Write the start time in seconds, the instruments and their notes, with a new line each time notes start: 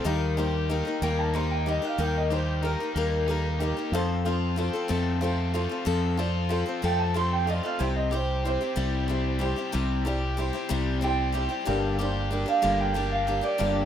0.04 fingered electric bass D#2, steel-string acoustic guitar D#3 G3 A#3 D#4 A#4, upright piano D#4 G4 A#4
0.37 steel-string acoustic guitar G3 A#3 D#4 A#4, upright piano D#4 G4 C5, overdriven electric guitar G4
0.69 steel-string acoustic guitar G3 A#3 D#4 A#4, upright piano D#4 G4 A#4
0.85 steel-string acoustic guitar A#3 D#4 A#4
1.02 fingered electric bass D#2, steel-string acoustic guitar D#3 G3 A#3 D#4 A#4, clean electric guitar G5
1.19 clean electric guitar A5
1.34 steel-string acoustic guitar G3 A#3 D#4 A#4, upright piano D#4 G4 C5, clean electric guitar C6
1.51 clean electric guitar G5
1.65 steel-string acoustic guitar G3 A#3 D#4 A#4, upright piano D#4 G4 A#4, overdriven electric guitar G4, clean electric guitar D#5
1.82 steel-string acoustic guitar A#3 D#4 A#4, clean electric guitar F5
1.98 fingered electric bass D#2, steel-string acoustic guitar D#3 G3 A#3 D#4 A#4, clean electric guitar G5
2.18 clean electric guitar D#5
2.30 steel-string acoustic guitar G3 A#3 D#4 A#4, upright piano D#4 G4 C5, overdriven electric guitar G4, clean electric guitar C5
2.62 steel-string acoustic guitar G3 A#3 D#4 A#4, upright piano D#4 G4 A#4, clean electric guitar A#4
2.80 steel-string acoustic guitar A#3 D#4 A#4
2.95 fingered electric bass D#2, steel-string acoustic guitar D#3 G3 A#3 D#4 A#4
3.27 steel-string acoustic guitar G3 A#3 D#4 A#4, upright piano D#4 G4 A4
3.59 steel-string acoustic guitar G3 A#3 D#4 A#4, upright piano D#4 G4 A#4, overdriven electric guitar G4
3.77 steel-string acoustic guitar A#3 D#4 A#4
3.92 fingered electric bass F2, overdriven electric guitar F2, steel-string acoustic guitar F3 C4 F4 A4, upright piano F4 A4 C5
4.25 steel-string acoustic guitar F3 C4 F4 A4, upright piano F4 A4 C5
4.56 steel-string acoustic guitar F3 C4 F4 A4, upright piano F4 A4 C5
4.73 steel-string acoustic guitar C4 F4 A4
4.88 fingered electric bass F2, steel-string acoustic guitar F3 C4 F4 A4, overdriven electric guitar A3
5.21 steel-string acoustic guitar F3 C4 F4 A4, upright piano F4 A4 C5
5.53 steel-string acoustic guitar F3 C4 F4 A4, upright piano F4 A4 C5
5.69 steel-string acoustic guitar C4 F4 A4
5.85 overdriven electric guitar F2, fingered electric bass F2, steel-string acoustic guitar F3 C4 F4 A4
6.17 steel-string acoustic guitar F3 C4 F4 A4, upright piano F4 A4 D5
6.49 steel-string acoustic guitar F3 C4 F4 A4, upright piano F4 A4 C5
6.66 steel-string acoustic guitar C4 F4 A4
6.82 fingered electric bass F2, steel-string acoustic guitar F3 C4 F4 A4, overdriven electric guitar A3, clean electric guitar G5
7.00 clean electric guitar A5
7.14 steel-string acoustic guitar F3 C4 F4 A4, upright piano F4 A4 C5, clean electric guitar C6
7.33 clean electric guitar G5
7.45 steel-string acoustic guitar F3 C4 F4, upright piano F4 A4 D5, clean electric guitar D#5
7.50 steel-string acoustic guitar A4
7.63 steel-string acoustic guitar C4 F4 A4, clean electric guitar F5
7.78 fingered electric bass C2, steel-string acoustic guitar C3 G3 C4 E4 G4, upright piano E4 G4 C5, clean electric guitar G5
7.96 clean electric guitar D#5
8.11 steel-string acoustic guitar G3 C4 E4 G4, upright piano E4 G4 C5, clean electric guitar C5
8.44 steel-string acoustic guitar G3 C4 E4 G4, upright piano E4 G4 C5, clean electric guitar C5
8.61 steel-string acoustic guitar C4 E4 G4
8.76 fingered electric bass C2, steel-string acoustic guitar C3 G3 C4 E4 G4
9.08 steel-string acoustic guitar G3 C4 E4 G4, upright piano E4 G4 C5
9.39 steel-string acoustic guitar G3 C4 E4 G4, upright piano E4 G4
9.43 upright piano C5
9.56 steel-string acoustic guitar C4 E4 G4
9.72 fingered electric bass C2, steel-string acoustic guitar C3 G3 C4 E4 G4
10.05 steel-string acoustic guitar G3 C4 E4 G4, upright piano E4 G4 D5
10.37 steel-string acoustic guitar G3 C4 E4 G4, upright piano E4 G4 C5
10.53 steel-string acoustic guitar C4 E4 G4
10.69 fingered electric bass C2, steel-string acoustic guitar C3 G3 C4 E4 G4
11.01 steel-string acoustic guitar G3 C4 E4 G4, upright piano E4 G4, clean electric guitar G5
11.05 upright piano C5
11.32 steel-string acoustic guitar G3 C4 E4 G4, upright piano E4 G4
11.37 upright piano C5
11.49 steel-string acoustic guitar C4 E4 G4
11.65 fingered electric bass G1, steel-string acoustic guitar G2 D3 G3 A#3 D4 G4, upright piano D4 G4 A#4
11.99 steel-string acoustic guitar G3 A#3 D4 G4, upright piano D4 G4
12.03 upright piano C5
12.31 steel-string acoustic guitar G3 A#3 D4 G4, upright piano D4 G4 A#4
12.46 steel-string acoustic guitar G3 A#3 D4 G4, clean electric guitar F5
12.62 fingered electric bass G1, steel-string acoustic guitar G2 D3 G3 A#3 D4 G4
12.81 clean electric guitar G5
12.94 steel-string acoustic guitar G3 A#3 D4 G4, upright piano D4 G4 A#4
13.12 clean electric guitar F5
13.27 steel-string acoustic guitar G3 A#3 D4 G4, upright piano D4 G4 A#4
13.41 steel-string acoustic guitar G3 A#3 D4 G4, clean electric guitar D5
13.58 fingered electric bass G1, steel-string acoustic guitar G2 D3 G3 A#3 D4 G4